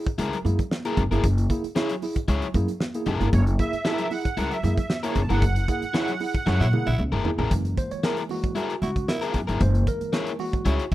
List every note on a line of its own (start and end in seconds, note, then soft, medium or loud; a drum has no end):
0.07 kick loud
0.07 closed hi-hat soft
0.18 0.30 C#2 medium
0.18 0.35 E4 medium
0.18 0.24 E4 soft
0.18 0.24 G#4 soft
0.18 0.36 G#4 medium
0.18 0.36 A#4 medium
0.18 closed hi-hat medium
0.18 muted conga soft
0.18 low conga medium
0.32 0.47 F#3 medium
0.32 closed hi-hat medium
0.45 0.56 F#2 medium
0.45 0.60 A#3 medium
0.45 0.60 E4 medium
0.45 0.61 G#4 medium
0.45 closed hi-hat medium
0.45 muted conga medium
0.45 low conga medium
0.59 kick medium
0.59 closed hi-hat medium
0.71 snare loud
0.71 high conga medium
0.85 0.99 A#3 medium
0.85 0.99 E4 medium
0.85 1.01 E4 medium
0.85 1.00 G#4 medium
0.85 1.01 G#4 medium
0.85 1.01 A#4 medium
0.85 closed hi-hat medium
0.97 1.09 F#1 medium
0.97 1.13 F#3 medium
0.97 kick medium
0.97 closed hi-hat medium
0.97 high conga medium
1.11 1.22 G1 medium
1.11 1.26 A#3 medium
1.11 1.26 E4 medium
1.11 1.24 E4 soft
1.11 1.26 G#4 medium
1.11 1.24 G#4 medium
1.11 1.23 A#4 medium
1.11 closed hi-hat medium
1.24 1.46 F#1 loud
1.24 1.40 F#3 medium
1.24 kick loud
1.24 closed hi-hat medium
1.24 muted conga medium
1.38 1.43 E4 soft
1.38 1.43 G#4 soft
1.38 closed hi-hat medium
1.50 1.66 A#3 medium
1.50 1.66 E4 medium
1.50 1.66 G#4 medium
1.50 kick loud
1.50 closed hi-hat medium
1.64 muted upright bass stroke soft
1.64 closed hi-hat medium
1.75 1.92 E4 medium
1.75 1.93 G#4 loud
1.75 1.92 G#4 medium
1.75 1.93 C#5 medium
1.75 snare loud
1.75 high conga medium
1.89 2.05 F#3 medium
1.89 closed hi-hat medium
2.02 2.18 E4 medium
2.02 2.18 G#4 medium
2.02 open hi-hat medium
2.02 muted conga medium
2.16 kick medium
2.16 closed hi-hat soft
2.28 2.40 C#2 medium
2.28 2.45 E4 medium
2.28 2.34 E4 soft
2.28 2.45 G#4 medium
2.28 2.34 G#4 soft
2.28 2.46 C#5 medium
2.28 kick medium
2.28 closed hi-hat medium
2.28 muted conga soft
2.42 2.57 F#3 medium
2.42 closed hi-hat soft
2.54 2.66 F#2 medium
2.54 2.70 A#3 medium
2.54 2.70 E4 medium
2.54 2.71 G#4 medium
2.54 kick medium
2.54 closed hi-hat medium
2.54 muted conga medium
2.54 low conga medium
2.68 closed hi-hat medium
2.80 snare loud
2.80 high conga medium
2.94 3.09 A#3 medium
2.94 3.09 E4 medium
2.94 3.09 G#4 medium
2.94 closed hi-hat medium
3.06 3.18 F#1 medium
3.06 3.23 F#3 medium
3.06 3.27 E4 medium
3.06 3.27 G#4 medium
3.06 3.27 A#4 medium
3.06 closed hi-hat medium
3.06 high conga medium
3.20 3.31 G1 medium
3.20 3.35 A#3 medium
3.20 3.35 E4 medium
3.20 3.35 G#4 medium
3.20 closed hi-hat medium
3.33 3.55 F#1 loud
3.33 3.49 F#3 medium
3.33 3.45 C#5 loud
3.33 kick loud
3.33 closed hi-hat medium
3.33 muted conga soft
3.47 3.52 E4 soft
3.47 3.52 G#4 soft
3.47 closed hi-hat medium
3.59 3.75 A#3 medium
3.59 3.75 E4 medium
3.59 3.75 G#4 medium
3.59 4.13 E5 loud
3.59 kick loud
3.59 closed hi-hat medium
3.73 muted upright bass stroke soft
3.73 closed hi-hat medium
3.85 4.05 E4 medium
3.85 4.01 E4 medium
3.85 4.06 G#4 medium
3.85 4.01 G#4 medium
3.85 4.06 A#4 medium
3.85 snare loud
3.85 high conga medium
3.98 4.14 F#3 medium
3.98 closed hi-hat medium
4.11 4.27 E4 medium
4.11 4.27 G#4 medium
4.11 4.53 F#5 loud
4.11 open hi-hat medium
4.11 muted conga medium
4.25 kick medium
4.25 closed hi-hat soft
4.37 4.49 C#2 medium
4.37 4.54 E4 medium
4.37 4.43 E4 soft
4.37 4.55 G#4 medium
4.37 4.43 G#4 soft
4.37 4.55 A#4 medium
4.37 closed hi-hat medium
4.37 low conga medium
4.51 4.66 F#3 medium
4.51 4.76 E5 loud
4.51 closed hi-hat soft
4.63 4.75 F#2 medium
4.63 4.79 A#3 medium
4.63 4.80 E4 medium
4.63 4.80 G#4 medium
4.63 snare soft
4.63 closed hi-hat medium
4.63 muted conga medium
4.63 low conga medium
4.78 5.02 E5 medium
4.78 kick medium
4.78 closed hi-hat medium
4.90 snare loud
4.90 high conga medium
5.03 5.18 A#3 medium
5.03 5.18 E4 medium
5.03 5.20 E4 medium
5.03 5.20 G#4 medium
5.03 5.18 G#4 medium
5.03 5.19 A#4 medium
5.03 5.23 C#5 medium
5.03 closed hi-hat medium
5.15 5.28 F#1 loud
5.15 5.32 F#3 medium
5.15 kick medium
5.15 closed hi-hat medium
5.15 high conga medium
5.21 5.29 A5 medium
5.29 5.42 G1 medium
5.29 5.44 A#3 medium
5.29 5.45 E4 medium
5.29 5.42 E4 soft
5.29 5.42 G#4 medium
5.29 5.45 G#4 medium
5.29 5.42 A#4 medium
5.29 6.95 F#5 loud
5.29 closed hi-hat soft
5.42 5.64 F#1 loud
5.42 5.58 F#3 medium
5.42 kick loud
5.42 closed hi-hat medium
5.42 muted conga soft
5.56 5.61 E4 soft
5.56 5.61 G#4 medium
5.56 closed hi-hat medium
5.68 5.84 A#3 medium
5.68 5.84 E4 medium
5.68 5.84 G#4 medium
5.68 kick loud
5.68 closed hi-hat medium
5.82 muted upright bass stroke soft
5.82 closed hi-hat medium
5.94 6.11 E4 medium
5.94 6.10 E4 medium
5.94 6.11 G#4 medium
5.94 6.10 G#4 medium
5.94 6.12 C#5 medium
5.94 snare loud
5.94 high conga medium
6.08 6.23 F#3 medium
6.08 closed hi-hat medium
6.20 6.36 E4 medium
6.20 6.37 G#4 medium
6.20 open hi-hat medium
6.20 muted conga medium
6.35 kick loud
6.35 closed hi-hat soft
6.46 6.58 F#2 loud
6.46 6.63 E4 medium
6.46 6.53 E4 soft
6.46 6.64 G#4 medium
6.46 6.53 G#4 soft
6.46 6.64 C#5 medium
6.46 snare medium
6.46 low conga medium
6.60 6.71 A#2 medium
6.60 6.75 F#3 medium
6.60 6.68 E4 loud
6.60 snare medium
6.73 6.89 A#3 medium
6.73 6.89 E4 medium
6.73 6.89 G#4 medium
6.73 high tom medium
6.73 muted conga medium
6.73 low conga medium
6.87 6.97 A#1 loud
6.87 7.04 E4 loud
6.87 high tom medium
6.99 7.11 C#2 medium
6.99 7.05 E4 soft
6.99 7.05 G#4 soft
6.99 mid tom medium
6.99 high conga medium
7.12 7.23 F#1 medium
7.12 7.28 F#3 medium
7.12 7.29 E4 medium
7.12 7.29 G#4 medium
7.12 7.28 A#4 medium
7.12 mid tom medium
7.25 7.41 A#3 medium
7.25 7.41 E4 medium
7.25 7.42 G#4 medium
7.25 floor tom loud
7.25 high conga medium
7.38 7.49 A1 medium
7.38 7.52 E4 soft
7.38 7.51 G#4 medium
7.38 7.51 A#4 medium
7.38 floor tom loud
7.51 7.74 F#1 loud
7.51 8.29 E3 medium
7.51 8.30 G#3 soft
7.51 8.30 A#3 medium
7.51 kick loud
7.51 closed hi-hat loud
7.51 muted conga soft
7.65 closed hi-hat medium
7.77 7.92 C5 medium
7.77 kick loud
7.77 closed hi-hat medium
7.91 8.04 C#5 medium
7.91 muted upright bass stroke soft
7.91 closed hi-hat soft
8.03 8.21 E4 medium
8.03 8.21 G#4 medium
8.03 8.16 A#4 medium
8.03 8.21 A#4 medium
8.03 snare loud
8.03 high conga loud
8.17 closed hi-hat medium
8.29 8.54 E3 soft
8.29 8.54 G#3 soft
8.29 8.54 A#3 medium
8.29 8.82 F#4 medium
8.29 open hi-hat medium
8.29 muted conga medium
8.44 kick loud
8.44 closed hi-hat soft
8.55 8.73 E4 medium
8.55 8.65 E4 medium
8.55 8.73 G#4 medium
8.55 8.73 A#4 medium
8.55 closed hi-hat medium
8.55 low conga medium
8.70 closed hi-hat soft
8.82 9.04 C#2 medium
8.82 8.91 E4 medium
8.82 9.10 F#4 medium
8.82 snare soft
8.82 closed hi-hat medium
8.82 muted conga medium
8.82 low conga medium
8.96 kick medium
8.96 closed hi-hat medium
9.08 9.47 E4 loud
9.08 9.33 A#4 medium
9.08 snare loud
9.08 high conga medium
9.22 9.39 E4 medium
9.22 9.38 G#4 medium
9.22 9.38 A#4 medium
9.22 closed hi-hat medium
9.34 9.46 F#2 medium
9.34 kick medium
9.34 closed hi-hat medium
9.34 high conga medium
9.47 9.59 G1 medium
9.47 9.61 E4 soft
9.47 9.61 G#4 medium
9.47 9.60 A#4 soft
9.47 closed hi-hat soft
9.60 9.83 F#1 loud
9.60 10.35 E3 medium
9.60 10.36 G#3 medium
9.60 10.36 A#3 medium
9.60 9.88 C5 loud
9.60 kick loud
9.60 closed hi-hat medium
9.60 muted conga soft
9.75 closed hi-hat soft
9.87 10.36 A#4 loud
9.87 kick medium
9.87 closed hi-hat medium
10.01 muted upright bass stroke soft
10.01 closed hi-hat medium
10.13 10.30 E4 medium
10.13 10.30 G#4 medium
10.13 10.30 C#5 medium
10.13 snare loud
10.13 high conga medium
10.27 closed hi-hat medium
10.39 10.63 E3 soft
10.39 10.63 G#3 soft
10.39 10.63 A#3 soft
10.39 10.88 F#4 medium
10.39 open hi-hat medium
10.39 muted conga medium
10.53 kick loud
10.53 closed hi-hat medium
10.65 10.77 C#2 medium
10.65 10.82 E4 medium
10.65 10.74 E4 medium
10.65 10.83 G#4 medium
10.65 10.83 C#5 medium
10.65 kick medium
10.65 closed hi-hat medium
10.65 muted conga soft
10.65 low conga medium
10.79 closed hi-hat medium